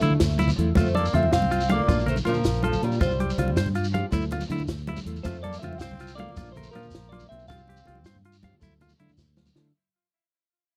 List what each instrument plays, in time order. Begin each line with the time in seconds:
Already playing: tenor saxophone A3, clean electric guitar E5
0.00 fingered electric bass D3, nylon-string guitar F3 A3 E4, clean electric guitar E4, closed hi-hat, high conga, shekere
0.10 low conga
0.20 fingered electric bass D2, snare, closed hi-hat, low conga, shekere
0.30 shekere
0.39 clean electric guitar E4, closed hi-hat, muted conga, low conga, shekere
0.48 high conga, low conga, shekere
0.56 fingered electric bass E2, nylon-string guitar F3 A3 E4, closed hi-hat, low conga
0.75 fingered electric bass F2, nylon-string guitar F3 A3 C4 F4, tenor saxophone A3, clean electric guitar F4 C5, kick, closed hi-hat, muted conga, low conga, shekere
0.86 shekere
0.95 tenor saxophone A#3, clean electric guitar A4 D5, closed hi-hat, high conga
1.05 shekere
1.12 fingered electric bass F2, nylon-string guitar F3 A3 C4 F4, tenor saxophone C4, clean electric guitar F4 E5, closed hi-hat, low conga
1.23 muted conga
1.32 fingered electric bass C2, tenor saxophone C4, clean electric guitar F5, muted clean electric guitar stroke, snare, closed hi-hat, shekere
1.42 high conga, low conga
1.51 clean electric guitar F4, closed hi-hat, shekere
1.60 shekere
1.69 nylon-string guitar F3 A3 F4, tenor saxophone A#3, clean electric guitar D5 F5, closed hi-hat, muted conga
1.79 low conga
1.88 fingered electric bass A#1, nylon-string guitar F3 A#3 D4 F4, clean electric guitar F4, kick, closed hi-hat, high conga, shekere
1.99 shekere
2.06 tenor saxophone A3, clean electric guitar A#4 C5, closed hi-hat, low conga, shekere
2.16 muted conga, shekere
2.25 fingered electric bass A#2, nylon-string guitar F3 A#3 D4 F4, tenor saxophone F3, clean electric guitar F4 A#4, closed hi-hat, high conga, shekere
2.34 low conga, shekere
2.44 fingered electric bass A#1, snare, closed hi-hat, shekere
2.54 shekere
2.63 clean electric guitar F4 A4, closed hi-hat, muted conga
2.67 tenor saxophone F3
2.73 high conga, low conga, shekere
2.82 fingered electric bass A#2, nylon-string guitar F3 D4 F4, tenor saxophone G3, clean electric guitar A#4, closed hi-hat
2.92 low conga, shekere
3.01 fingered electric bass C2, nylon-string guitar F3 C4 F4 G4, tenor saxophone G3, clean electric guitar F4 C5, kick, closed hi-hat, muted conga, low conga, shekere
3.11 shekere
3.20 clean electric guitar G4, closed hi-hat, high conga
3.30 shekere
3.37 fingered electric bass C2, nylon-string guitar F3 C4 F4, clean electric guitar F4, closed hi-hat, low conga
3.48 muted conga
3.57 fingered electric bass G2, clean electric guitar C5, snare, closed hi-hat, shekere
3.66 high conga, low conga
3.75 clean electric guitar F4, closed hi-hat, shekere
3.84 shekere
3.92 nylon-string guitar F3 C4 F4 G4, clean electric guitar F5, closed hi-hat, muted conga
4.11 fingered electric bass D2, nylon-string guitar F3 A3 E4, clean electric guitar E4, kick, closed hi-hat, high conga, shekere
4.22 shekere
4.31 clean electric guitar F4, closed hi-hat, low conga, shekere
4.40 muted conga, shekere
4.48 fingered electric bass D3, nylon-string guitar F3 A3 E4, clean electric guitar E4, closed hi-hat, high conga, shekere
4.58 low conga, shekere
4.68 fingered electric bass D2, snare, closed hi-hat, shekere
4.78 shekere
4.87 clean electric guitar E4, closed hi-hat, muted conga
4.96 high conga, low conga, shekere
5.05 fingered electric bass E2, nylon-string guitar F3 A3 E4, closed hi-hat
5.16 low conga, shekere
5.22 fingered electric bass F2, nylon-string guitar A3 C4 F4, tenor saxophone A3, clean electric guitar C5, kick, closed hi-hat, muted conga, low conga, shekere
5.26 clean electric guitar F4
5.35 shekere
5.43 tenor saxophone A#3, clean electric guitar A4 D5, closed hi-hat, high conga
5.53 shekere
5.59 nylon-string guitar A3 C4 F4, tenor saxophone C4, clean electric guitar E5, closed hi-hat, low conga
5.64 fingered electric bass F2, clean electric guitar F4
5.73 muted conga
5.78 fingered electric bass C2, tenor saxophone C4, clean electric guitar C5 F5, snare, closed hi-hat, shekere
5.91 high conga, low conga
5.99 clean electric guitar F4, closed hi-hat, shekere
6.07 shekere
6.15 nylon-string guitar A3 C4, tenor saxophone A#3, clean electric guitar D5, closed hi-hat, muted conga
6.19 nylon-string guitar F4, clean electric guitar F5
6.29 low conga
6.35 fingered electric bass A#1, nylon-string guitar F3 A#3 D4 F4, clean electric guitar F4, kick, closed hi-hat, high conga, shekere
6.46 shekere
6.52 tenor saxophone A3, clean electric guitar C5, shekere
6.56 clean electric guitar A#4, closed hi-hat, low conga
6.63 shekere
6.71 tenor saxophone F3, nylon-string guitar F3 A#3 D4 F4, clean electric guitar A#4, high conga, shekere
6.75 fingered electric bass A#2, clean electric guitar F4, closed hi-hat
6.83 low conga, shekere
6.91 snare, closed hi-hat, shekere
6.95 fingered electric bass A#1
7.00 shekere
7.09 tenor saxophone A#3, clean electric guitar F4 D5, muted conga
7.14 closed hi-hat
7.19 high conga, low conga, shekere
7.29 fingered electric bass B1, nylon-string guitar F3 A#3 D4 F4, tenor saxophone C4, clean electric guitar E5, closed hi-hat
7.39 low conga, shekere
7.48 fingered electric bass C2, nylon-string guitar F3 C4 F4 G4, tenor saxophone C4, clean electric guitar F4 F5, kick, closed hi-hat, muted conga, low conga, shekere
7.58 shekere
7.68 clean electric guitar G4, closed hi-hat, high conga
7.76 low conga, shekere
7.86 fingered electric bass C2, nylon-string guitar F3 C4 F4 G4, clean electric guitar F4, closed hi-hat, low conga
7.95 muted conga
8.04 fingered electric bass G2, clean electric guitar C5, snare, closed hi-hat, shekere
8.15 high conga, low conga
8.24 clean electric guitar F4, closed hi-hat
8.33 shekere
8.42 nylon-string guitar F3 C4 F4 G4, clean electric guitar F5, kick, closed hi-hat, muted conga, low conga, shekere
8.53 low conga
8.60 fingered electric bass D2, nylon-string guitar F3 A3 E4, clean electric guitar E4, kick, closed hi-hat, high conga, shekere
8.80 clean electric guitar F4, closed hi-hat, low conga, shekere
8.89 muted conga, shekere
8.98 fingered electric bass D3, nylon-string guitar F3 A3 E4, clean electric guitar E4, closed hi-hat, high conga
9.08 low conga, shekere
9.17 fingered electric bass D2, snare, shekere
9.36 snare, muted conga, shekere
9.46 high conga, low conga, shekere
9.55 fingered electric bass D3, nylon-string guitar F3 A3 E4, snare